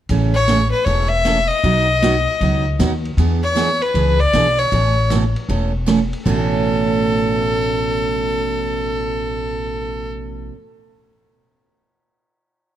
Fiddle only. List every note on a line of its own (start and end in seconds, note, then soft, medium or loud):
0.34 0.70 C#5 loud
0.72 0.86 B4 medium
0.84 1.11 C#5 medium
1.09 1.49 E5 loud
1.48 2.65 D#5 loud
3.43 3.83 C#5 loud
3.82 4.21 B4 loud
4.20 4.60 D5 loud
4.59 5.10 C#5 loud
6.25 10.10 A4 medium